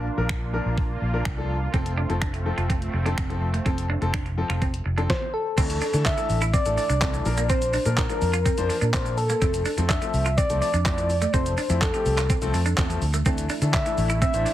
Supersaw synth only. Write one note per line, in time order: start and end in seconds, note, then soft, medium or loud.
0.00 1.72 A#3 medium
0.00 1.70 D4 medium
0.00 5.06 F4 medium
1.74 5.06 A3 medium
1.74 5.06 C4 medium
13.26 14.54 A3 medium
13.26 14.54 D4 medium
13.26 14.54 E4 loud